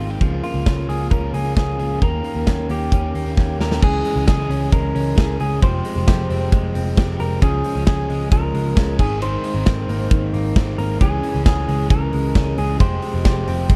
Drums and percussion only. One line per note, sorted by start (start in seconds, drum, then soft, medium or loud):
0.21 kick loud
0.21 closed hi-hat medium
0.44 open hi-hat medium
0.66 kick loud
0.66 snare loud
0.66 closed hi-hat medium
0.89 open hi-hat medium
1.11 kick loud
1.11 closed hi-hat medium
1.34 open hi-hat medium
1.57 kick loud
1.57 snare loud
1.57 closed hi-hat medium
1.79 open hi-hat medium
2.02 kick loud
2.02 closed hi-hat medium
2.24 open hi-hat medium
2.47 kick loud
2.47 snare loud
2.47 closed hi-hat medium
2.70 open hi-hat medium
2.92 kick loud
2.92 closed hi-hat medium
3.15 open hi-hat medium
3.37 kick loud
3.37 snare soft
3.60 snare medium
3.71 snare medium
3.82 kick loud
3.82 crash medium
4.05 open hi-hat medium
4.28 kick loud
4.28 snare loud
4.28 hi-hat pedal medium
4.28 ride medium
4.51 open hi-hat medium
4.72 kick loud
4.72 hi-hat pedal medium
4.72 ride medium
4.96 open hi-hat medium
5.18 kick loud
5.18 snare loud
5.18 hi-hat pedal medium
5.18 ride medium
5.40 open hi-hat medium
5.62 kick loud
5.62 hi-hat pedal medium
5.62 ride medium
5.85 open hi-hat medium
6.08 kick loud
6.08 snare loud
6.08 hi-hat pedal medium
6.08 ride medium
6.30 open hi-hat medium
6.52 kick loud
6.52 hi-hat pedal medium
6.52 ride medium
6.75 open hi-hat medium
6.97 kick loud
6.97 snare loud
6.97 hi-hat pedal medium
6.97 ride medium
7.20 open hi-hat medium
7.42 kick loud
7.42 hi-hat pedal medium
7.42 ride medium
7.64 open hi-hat medium
7.87 kick loud
7.87 snare loud
7.87 hi-hat pedal medium
7.87 ride medium
8.10 open hi-hat medium
8.32 kick loud
8.32 hi-hat pedal medium
8.32 ride medium
8.55 open hi-hat medium
8.77 kick loud
8.77 snare loud
8.77 hi-hat pedal medium
8.77 ride medium
8.99 kick medium
8.99 crash medium
9.22 hi-hat pedal medium
9.22 ride medium
9.44 open hi-hat medium
9.66 kick loud
9.66 snare loud
9.66 hi-hat pedal medium
9.66 ride medium
9.89 open hi-hat medium
10.11 kick loud
10.11 hi-hat pedal medium
10.11 ride medium
10.34 open hi-hat medium
10.56 kick loud
10.56 snare loud
10.56 hi-hat pedal medium
10.56 ride medium
10.79 open hi-hat medium
11.01 kick loud
11.01 hi-hat pedal medium
11.01 ride medium
11.23 open hi-hat medium
11.46 kick loud
11.46 snare loud
11.46 hi-hat pedal medium
11.46 ride medium
11.69 open hi-hat medium
11.90 kick loud
11.90 hi-hat pedal medium
11.90 ride medium
12.13 open hi-hat medium
12.35 kick loud
12.35 snare loud
12.35 hi-hat pedal medium
12.35 ride medium
12.58 open hi-hat medium
12.80 kick loud
12.80 hi-hat pedal medium
12.80 ride medium
13.02 open hi-hat medium
13.25 kick loud
13.25 snare loud
13.25 hi-hat pedal medium
13.25 ride medium
13.48 open hi-hat medium
13.70 kick loud
13.70 hi-hat pedal medium
13.70 ride medium